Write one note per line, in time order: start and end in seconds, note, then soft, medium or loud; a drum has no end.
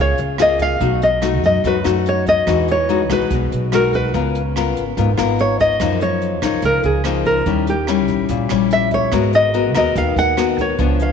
0.00 0.17 C#2 medium
0.00 0.78 C#3 soft
0.00 0.36 A#3 soft
0.00 0.36 F4 medium
0.00 0.36 G#4 medium
0.00 0.19 C#5 medium
0.18 0.77 C#2 medium
0.18 closed hi-hat soft
0.38 0.78 A#3 medium
0.38 0.78 F4 medium
0.38 0.78 G#4 medium
0.38 0.62 D#5 medium
0.38 cross-stick medium
0.38 closed hi-hat soft
0.59 1.00 F5 medium
0.59 kick medium
0.59 closed hi-hat soft
0.81 1.43 B1 loud
0.81 1.62 B2 soft
0.81 1.08 A3 soft
0.81 1.08 D#4 soft
0.81 1.08 F#4 medium
0.81 kick medium
0.81 closed hi-hat medium
1.02 1.41 D#5 medium
1.02 closed hi-hat soft
1.22 1.61 A3 medium
1.22 1.61 D#4 medium
1.22 1.61 F#4 medium
1.22 cross-stick medium
1.22 closed hi-hat soft
1.43 1.63 F#2 medium
1.43 1.66 D#5 medium
1.43 kick medium
1.43 closed hi-hat soft
1.64 1.83 F#2 medium
1.64 2.46 F#2 soft
1.64 1.77 A3 soft
1.64 1.77 D#4 soft
1.64 1.77 F#4 medium
1.64 1.85 B4 medium
1.64 kick medium
1.64 closed hi-hat medium
1.84 2.44 F#2 medium
1.84 2.44 A3 medium
1.84 2.44 D#4 medium
1.84 2.44 F#4 medium
1.84 cross-stick medium
1.84 closed hi-hat soft
2.06 2.28 C#5 medium
2.06 closed hi-hat soft
2.26 2.66 D#5 loud
2.26 kick soft
2.26 closed hi-hat soft
2.47 3.10 E2 loud
2.47 3.28 E3 medium
2.47 2.74 G#3 soft
2.47 2.74 D#4 medium
2.47 2.74 F#4 medium
2.47 kick medium
2.47 cross-stick medium
2.47 closed hi-hat medium
2.68 3.09 C#5 medium
2.68 closed hi-hat soft
2.89 3.01 G#3 medium
2.89 3.01 D#4 medium
2.89 3.01 F#4 medium
2.89 closed hi-hat soft
3.10 3.29 B1 medium
3.10 3.69 G#3 medium
3.10 3.69 D#4 medium
3.10 3.69 F#4 medium
3.10 3.50 B4 medium
3.10 kick medium
3.10 cross-stick medium
3.10 closed hi-hat soft
3.30 3.50 B1 medium
3.30 4.11 B2 medium
3.30 kick medium
3.30 closed hi-hat medium
3.52 4.10 B1 medium
3.52 closed hi-hat soft
3.72 4.12 G#3 medium
3.72 4.12 D#4 medium
3.72 4.12 F#4 medium
3.72 3.95 A#4 medium
3.72 cross-stick medium
3.72 closed hi-hat soft
3.93 5.44 B4 medium
3.93 kick medium
3.93 closed hi-hat soft
4.14 4.77 C#2 loud
4.14 4.95 C#3 soft
4.14 4.41 B3 soft
4.14 4.41 F4 medium
4.14 4.41 A#4 medium
4.14 kick medium
4.14 closed hi-hat medium
4.35 closed hi-hat soft
4.56 4.83 B3 medium
4.56 4.83 F4 medium
4.56 4.83 A#4 medium
4.56 cross-stick medium
4.56 closed hi-hat soft
4.76 4.96 G#1 medium
4.76 closed hi-hat soft
4.97 5.16 G#1 medium
4.97 5.78 G#2 soft
4.97 5.09 B3 soft
4.97 5.10 F4 medium
4.97 5.10 A#4 medium
4.97 kick medium
4.97 closed hi-hat medium
5.17 5.77 G#1 medium
5.17 5.77 B3 medium
5.17 5.77 F4 medium
5.17 5.77 A#4 medium
5.17 cross-stick medium
5.17 closed hi-hat soft
5.39 5.60 C#5 medium
5.39 closed hi-hat soft
5.59 6.02 D#5 medium
5.59 kick soft
5.59 closed hi-hat soft
5.80 6.42 F#2 medium
5.80 6.62 F#2 medium
5.80 6.40 F3 soft
5.80 6.40 A#3 medium
5.80 6.40 D#4 medium
5.80 kick medium
5.80 cross-stick medium
5.80 closed hi-hat medium
6.01 6.40 C#5 medium
6.01 closed hi-hat soft
6.21 closed hi-hat soft
6.42 6.62 C#2 medium
6.42 7.01 F3 soft
6.42 7.01 A#3 medium
6.42 7.01 D#4 medium
6.42 6.63 C#5 medium
6.42 kick soft
6.42 cross-stick medium
6.42 closed hi-hat soft
6.62 6.82 C#2 medium
6.62 7.44 C#3 soft
6.62 6.85 A#4 medium
6.62 kick medium
6.62 closed hi-hat medium
6.83 7.42 C#2 medium
6.83 7.26 G#4 medium
6.83 closed hi-hat soft
7.04 7.43 F3 medium
7.04 7.43 A#3 medium
7.04 7.44 D#4 medium
7.04 cross-stick medium
7.04 closed hi-hat soft
7.25 7.69 A#4 medium
7.25 kick medium
7.25 closed hi-hat soft
7.46 8.08 D#2 medium
7.46 8.27 D#3 soft
7.46 7.73 G3 soft
7.46 7.73 C#4 medium
7.46 7.74 E4 medium
7.46 kick medium
7.46 closed hi-hat medium
7.67 8.47 G4 medium
7.67 closed hi-hat soft
7.87 8.47 G3 medium
7.87 8.47 C#4 medium
7.87 8.47 E4 medium
7.87 cross-stick soft
7.87 closed hi-hat soft
8.08 8.28 A#1 medium
8.08 kick soft
8.08 closed hi-hat soft
8.29 8.49 A#1 medium
8.29 9.11 A#2 medium
8.29 kick medium
8.29 closed hi-hat medium
8.49 9.09 A#1 medium
8.49 9.09 G3 medium
8.49 9.10 C#4 medium
8.49 9.10 E4 medium
8.49 cross-stick medium
8.49 closed hi-hat soft
8.71 8.93 E5 medium
8.71 closed hi-hat soft
8.91 9.32 C#5 medium
8.91 kick soft
8.91 closed hi-hat soft
9.12 9.75 G#1 loud
9.12 9.94 G#3 medium
9.12 9.51 B3 medium
9.12 9.51 F#4 soft
9.12 9.51 A#4 medium
9.12 kick medium
9.12 cross-stick medium
9.12 closed hi-hat medium
9.33 9.76 D#5 medium
9.33 closed hi-hat medium
9.54 9.72 B3 medium
9.54 9.72 F#4 medium
9.54 9.72 A#4 medium
9.54 closed hi-hat soft
9.75 9.94 D#2 medium
9.75 10.34 B3 medium
9.75 10.34 F#4 medium
9.75 10.34 A#4 medium
9.75 9.95 D#5 medium
9.75 kick medium
9.75 cross-stick medium
9.75 closed hi-hat soft
9.96 10.15 D#2 medium
9.96 10.77 D#3 medium
9.96 10.18 F5 medium
9.96 kick medium
9.96 closed hi-hat medium
10.16 10.75 D#2 medium
10.16 10.60 F#5 loud
10.16 closed hi-hat soft
10.37 10.64 B3 medium
10.37 10.64 F#4 medium
10.37 10.64 A#4 medium
10.37 cross-stick medium
10.37 closed hi-hat soft
10.58 11.02 C#5 medium
10.58 kick medium
10.58 closed hi-hat soft
10.79 11.12 C#2 medium
10.79 11.12 C#3 soft
10.79 11.12 F3 soft
10.79 11.12 B3 medium
10.79 11.12 D4 medium
10.79 kick medium
10.79 closed hi-hat medium
10.99 11.12 F5 medium
10.99 closed hi-hat soft